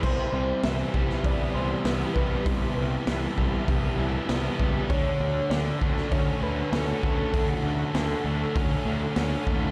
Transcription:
0.02 picked electric bass C2, distorted electric guitar C3, overdriven electric guitar C3, string machine G4 E5 B5, clean electric guitar C5, kick, crash
0.32 picked electric bass C2, distorted electric guitar G3
0.63 picked electric bass C2, overdriven electric guitar E3, distorted electric guitar B3, clean electric guitar E5, snare, open hi-hat
0.94 picked electric bass C2, overdriven electric guitar G3, distorted electric guitar G3, kick
1.10 snare
1.24 picked electric bass C2, distorted electric guitar E3, overdriven electric guitar B3, clean electric guitar D5, kick, open hi-hat
1.54 picked electric bass C2, overdriven electric guitar E3, distorted electric guitar G3, clean electric guitar C5
1.84 picked electric bass C2, overdriven electric guitar B3, distorted electric guitar E4, clean electric guitar B4, snare, open hi-hat
2.16 picked electric bass C2, overdriven electric guitar G3, distorted electric guitar B3, clean electric guitar B4, kick
2.44 picked electric bass C2, distorted electric guitar C3, overdriven electric guitar C3, string machine A5, kick, open hi-hat
2.77 picked electric bass C2, distorted electric guitar G3
3.07 picked electric bass C2, overdriven electric guitar E3, distorted electric guitar B3, snare, open hi-hat
3.38 picked electric bass C2, distorted electric guitar G3, overdriven electric guitar G3, kick
3.68 picked electric bass C2, distorted electric guitar E3, overdriven electric guitar B3, kick, open hi-hat
3.98 picked electric bass C2, overdriven electric guitar E3, distorted electric guitar G3
4.29 picked electric bass C2, overdriven electric guitar B3, distorted electric guitar E4, snare, open hi-hat
4.60 picked electric bass C#2, overdriven electric guitar G3, distorted electric guitar B3, kick
4.89 picked electric bass D2, overdriven electric guitar D3, distorted electric guitar D3, string machine A4 F#5 C#6, clean electric guitar C#5, kick, open hi-hat
5.20 picked electric bass D2, distorted electric guitar A3
5.50 picked electric bass D2, overdriven electric guitar D3, distorted electric guitar C#4, clean electric guitar D5, snare, open hi-hat
5.81 picked electric bass D2, distorted electric guitar A3, overdriven electric guitar A3, kick
5.97 snare
6.11 picked electric bass D2, distorted electric guitar D3, overdriven electric guitar C#4, clean electric guitar C#5, kick, open hi-hat
6.42 picked electric bass D2, overdriven electric guitar D3, distorted electric guitar A3, clean electric guitar B4
6.72 picked electric bass D2, overdriven electric guitar C#4, distorted electric guitar F#4, clean electric guitar A4, snare, open hi-hat
7.03 picked electric bass D2, overdriven electric guitar A3, distorted electric guitar C#4, clean electric guitar A4, kick
7.33 picked electric bass D2, distorted electric guitar D3, overdriven electric guitar D3, kick, open hi-hat
7.63 picked electric bass D2, distorted electric guitar A3
7.94 picked electric bass D2, overdriven electric guitar D3, distorted electric guitar C#4, snare, open hi-hat
8.24 picked electric bass D2, distorted electric guitar A3, overdriven electric guitar A3
8.55 picked electric bass D2, distorted electric guitar D3, overdriven electric guitar C#4, kick, open hi-hat
8.85 picked electric bass D2, overdriven electric guitar D3, distorted electric guitar A3
9.16 picked electric bass D2, overdriven electric guitar C#4, distorted electric guitar F#4, snare, open hi-hat
9.47 picked electric bass D#2, overdriven electric guitar A3, distorted electric guitar C#4, kick

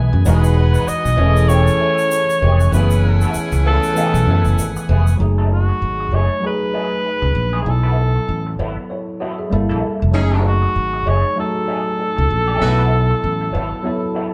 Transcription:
Already playing: tine electric piano E3 A3 B3 G#5, tonewheel organ B4 G#5
0.12 fingered electric bass F#2, muted clean electric guitar stroke
0.25 fingered electric bass E1, tine electric piano E3 G#3 D#4 F#4, clean electric guitar F#3 B3 D#4 G#4, horn section B3 D#4 G#4, cor anglais B4, tonewheel organ D#5 F#5, shaker
0.44 shaker
0.56 muted clean electric guitar stroke
0.73 clean electric guitar F#3 B3 D#4 B4, shaker
0.88 cor anglais D#5, muted fingered electric bass stroke, shaker
1.05 fingered electric bass B1, muted clean electric guitar stroke, shaker
1.17 fingered electric bass E1, tine electric piano E3 A3 C#4 G#4, clean electric guitar E3 A3 C#4 G#4, horn section C#4 E4 A4, tonewheel organ C#5
1.36 muted clean electric guitar stroke, shaker
1.48 clean electric guitar E3 A3 C#4 G#4, cor anglais C#5, shaker
1.67 muted clean electric guitar stroke, shaker
1.80 clean electric guitar E3 A3 C#4 A4
1.98 muted clean electric guitar stroke, shaker
2.11 muted clean electric guitar stroke, shaker
2.29 muted clean electric guitar stroke, shaker
2.42 fingered electric bass F1, clean electric guitar E3 A3 C#4 G#4
2.60 muted clean electric guitar stroke, shaker
2.71 fingered electric bass F#1, tine electric piano E3 A3 B3, clean electric guitar A3 B3 E4 G#4, horn section C#4 E4 G#5, tonewheel organ B4 F#5, cor anglais B4, shaker
2.75 tine electric piano G4
2.82 tine electric piano G#4
2.90 shaker
3.04 muted clean electric guitar stroke
3.21 clean electric guitar A3 B3 E4 A4, shaker
3.34 muted fingered electric bass stroke, shaker
3.52 fingered electric bass C#2, muted clean electric guitar stroke, shaker
3.65 clean electric guitar A3 B3 E4 G#4, cor anglais A4
3.83 muted clean electric guitar stroke, shaker
3.94 tine electric piano E3 A3 B3 G#5, clean electric guitar A3 B3, shaker
3.98 clean electric guitar E4 G#4
4.14 fingered electric bass B1, muted clean electric guitar stroke, shaker
4.27 fingered electric bass F#2, clean electric guitar A3 B3 E4 A4
4.45 fingered electric bass F#1, muted clean electric guitar stroke, shaker
4.58 fingered electric bass G#1, muted clean electric guitar stroke, shaker
4.76 muted clean electric guitar stroke, shaker
4.89 fingered electric bass F1, clean electric guitar A3 B3 E4 G#4
5.07 muted clean electric guitar stroke, shaker
5.17 fingered electric bass F#1, tine electric piano F#3 A3 D#4, muted clean electric guitar stroke
5.21 tine electric piano G#4
5.38 clean electric guitar F#3 A3 D#4 A4
5.52 cor anglais F#4, muted clean electric guitar stroke
5.69 muted clean electric guitar stroke
5.82 fingered electric bass G#1
6.00 muted clean electric guitar stroke
6.11 fingered electric bass F#1, clean electric guitar F#3 A3 D#4 G#4, cor anglais C#5
6.31 muted clean electric guitar stroke
6.41 tine electric piano F#3 A3 D#4 G#4, muted clean electric guitar stroke
6.46 cor anglais B4
6.73 clean electric guitar F#3 A3 D#4 G#4
6.91 muted clean electric guitar stroke
7.05 muted clean electric guitar stroke
7.22 fingered electric bass C#2, muted clean electric guitar stroke
7.35 fingered electric bass A#1
7.53 clean electric guitar F#3 A3 D#4 G#4
7.62 tine electric piano F#3, cor anglais G#4
7.66 fingered electric bass B1, tine electric piano B3 E4 A4, cor anglais A4, muted clean electric guitar stroke
7.83 clean electric guitar F#3 B3 E4 B4
7.97 muted clean electric guitar stroke
8.16 muted clean electric guitar stroke
8.29 fingered electric bass A1
8.47 muted clean electric guitar stroke
8.59 fingered electric bass G#1, clean electric guitar F#3 B3 E4 A4
8.77 muted clean electric guitar stroke
8.90 tine electric piano E4 C#5, muted clean electric guitar stroke
9.20 clean electric guitar F#3 B3 E4 A4, tine electric piano F#4 D#5
9.38 tine electric piano G#4 E5, muted clean electric guitar stroke
9.50 fingered electric bass G1, tine electric piano G3 A#3 E4 A4, muted clean electric guitar stroke
9.69 fingered electric bass A#1, clean electric guitar G3 A#3 E4 A4
9.82 muted clean electric guitar stroke
10.00 fingered electric bass F1, muted clean electric guitar stroke
10.11 fingered electric bass F#1, tine electric piano F#3 A3 D#4 G#4, horn section C#4 D#4 G#4, muted clean electric guitar stroke
10.32 clean electric guitar F#3 A3 D#4 A4
10.45 cor anglais F#4, muted clean electric guitar stroke
10.62 muted clean electric guitar stroke
10.76 fingered electric bass G#1
10.93 muted clean electric guitar stroke
11.06 fingered electric bass F#1, clean electric guitar F#3 A3 D#4 G#4, cor anglais C#5
11.25 muted clean electric guitar stroke
11.36 tine electric piano F#3 A3 D#4 F#4, cor anglais A4, muted clean electric guitar stroke
11.68 clean electric guitar F#3 A3 D#4 G#4
11.85 muted clean electric guitar stroke
11.99 muted clean electric guitar stroke
12.17 fingered electric bass C#2, muted clean electric guitar stroke
12.31 fingered electric bass A#1
12.48 clean electric guitar F#3 A3 D#4 G#4
12.59 fingered electric bass B1, tine electric piano F#3 B3 D#4 A4, horn section A3 B3 F#4, muted clean electric guitar stroke
12.68 tine electric piano E4
12.79 clean electric guitar F#3 B3 E4 B4
12.91 muted clean electric guitar stroke
13.10 muted clean electric guitar stroke
13.24 fingered electric bass A1
13.41 muted clean electric guitar stroke
13.53 fingered electric bass G#1, clean electric guitar F#3 B3 E4 A4
13.71 muted clean electric guitar stroke
13.83 tine electric piano F#3 B3 E4 A4, muted clean electric guitar stroke
14.15 clean electric guitar F#3 B3 E4 A4

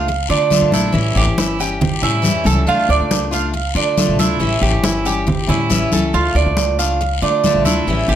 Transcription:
Already playing: upright bass C#2, cuban tres F5
0.08 muted steel-string acoustic guitar stroke, high conga, long guiro
0.29 upright bass D3, steel-string acoustic guitar A3 D4 F4, cuban tres D5, high conga
0.50 steel-string acoustic guitar D3 A3 D4 F4, high conga, short guiro
0.62 upright bass A1
0.72 upright bass A#1, steel-string acoustic guitar A3 D4 F4, cuban tres E4, high conga, short guiro
0.92 upright bass A1, steel-string acoustic guitar E3 G3 C#4 E4, high conga, long guiro
1.16 upright bass A1, cuban tres G4, high conga
1.27 upright bass G1
1.38 cuban tres E4, high conga, short guiro
1.59 steel-string acoustic guitar G3 C#4 E4, cuban tres G4, high conga, short guiro
1.81 muted steel-string acoustic guitar stroke, high conga, low conga, long guiro
2.02 upright bass A2, steel-string acoustic guitar G3 C#4 E4, cuban tres E4, high conga
2.22 steel-string acoustic guitar E3 G3 C#4 E4, high conga, short guiro
2.35 upright bass E2
2.44 upright bass C#2, steel-string acoustic guitar G3 C#4 E4, cuban tres A4, high conga, short guiro
2.67 upright bass D2, steel-string acoustic guitar A3 D4 F4, cuban tres F4, high conga, long guiro
2.89 upright bass D2, cuban tres D5, high conga
3.00 upright bass C#2
3.11 high conga, short guiro
3.31 steel-string acoustic guitar A3 D4 F4, cuban tres F5, high conga, short guiro
3.53 muted steel-string acoustic guitar stroke, high conga, long guiro
3.75 upright bass D3, steel-string acoustic guitar A3 D4 F4, cuban tres D5, high conga
3.97 steel-string acoustic guitar D3 A3 D4 F4, high conga, short guiro
4.08 upright bass A1
4.18 upright bass D2, steel-string acoustic guitar A3 D4 F4, cuban tres E4, high conga, short guiro
4.39 upright bass A1, steel-string acoustic guitar E3 G3 C#4 E4, high conga, long guiro
4.61 upright bass A1, cuban tres G4, high conga
4.73 upright bass G1
4.84 cuban tres E4, high conga, short guiro
5.05 steel-string acoustic guitar G3 C#4 E4, cuban tres G4, high conga, short guiro
5.27 muted steel-string acoustic guitar stroke, high conga, low conga, long guiro
5.47 upright bass A2, steel-string acoustic guitar G3 C#4 E4, cuban tres E4, high conga, low conga
5.70 upright bass A1, steel-string acoustic guitar E3 G3 C#4 E4, high conga, short guiro
5.92 upright bass C#2, steel-string acoustic guitar G3 C#4 E4, cuban tres A4, high conga, short guiro
6.13 upright bass D2, steel-string acoustic guitar A3 D4 F4, cuban tres F4, high conga, long guiro
6.35 upright bass D2, cuban tres D5, high conga
6.46 upright bass C#2
6.57 high conga, short guiro
6.79 steel-string acoustic guitar A3 D4 F4, cuban tres F5, high conga, short guiro
7.01 muted steel-string acoustic guitar stroke, high conga, long guiro
7.22 upright bass D3, steel-string acoustic guitar A3 D4 F4, cuban tres D5, high conga
7.44 steel-string acoustic guitar D3 A3 D4 F4, high conga, short guiro
7.55 upright bass A1
7.65 upright bass D2, steel-string acoustic guitar A3 D4 F4, cuban tres E4, high conga, short guiro
7.87 upright bass A1, steel-string acoustic guitar E3 G3 C#4 E4, high conga, long guiro
8.08 upright bass A1, cuban tres G4, high conga

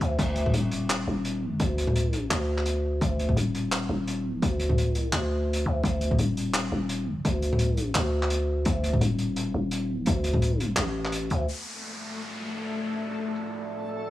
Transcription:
0.01 808-style bass D2, closed hi-hat
0.19 808-style bass D2, kick, closed hi-hat, crash
0.36 closed hi-hat
0.46 kick, mid tom
0.54 808-style bass D#1, closed hi-hat
0.72 closed hi-hat
0.89 clap, closed hi-hat
1.07 808-style bass D#1
1.25 closed hi-hat
1.60 808-style bass D2, kick, closed hi-hat
1.78 closed hi-hat
1.87 mid tom
1.96 closed hi-hat
2.13 closed hi-hat
2.31 808-style bass D2, clap, closed hi-hat
2.58 clap
2.66 closed hi-hat
3.01 808-style bass D2, kick, closed hi-hat
3.19 closed hi-hat
3.29 kick, mid tom
3.37 808-style bass D#1, closed hi-hat
3.55 closed hi-hat
3.72 clap, closed hi-hat
3.89 808-style bass D#1
4.07 closed hi-hat
4.42 808-style bass D2, kick, closed hi-hat
4.60 closed hi-hat
4.69 kick, mid tom
4.78 closed hi-hat
4.92 808-style bass C#2, closed hi-hat
5.13 808-style bass D2, clap, closed hi-hat
5.53 closed hi-hat
5.66 808-style bass D2
5.84 808-style bass D2, kick, closed hi-hat
6.01 closed hi-hat
6.11 kick, mid tom
6.19 808-style bass D#1, closed hi-hat
6.37 closed hi-hat
6.54 clap, closed hi-hat
6.72 808-style bass D#1
6.89 closed hi-hat
7.25 808-style bass D2, kick, closed hi-hat
7.42 closed hi-hat
7.53 mid tom
7.59 closed hi-hat
7.77 closed hi-hat
7.95 808-style bass D2, clap, closed hi-hat
8.23 clap
8.30 closed hi-hat
8.65 808-style bass D2, kick, closed hi-hat
8.84 closed hi-hat
8.93 kick, mid tom
9.01 808-style bass D#1, closed hi-hat
9.19 closed hi-hat
9.36 closed hi-hat
9.54 808-style bass D#1
9.71 closed hi-hat
10.06 808-style bass D2, kick, closed hi-hat
10.24 closed hi-hat
10.33 kick, mid tom
10.42 closed hi-hat
10.60 closed hi-hat
10.77 808-style bass A1, clap, closed hi-hat
11.05 clap
11.12 closed hi-hat
11.30 808-style bass D2, closed hi-hat
11.48 analog synth pad A3 F4 D5, synth texture A3 A4, downlifter
11.93 shaker
12.64 shaker
13.36 shaker

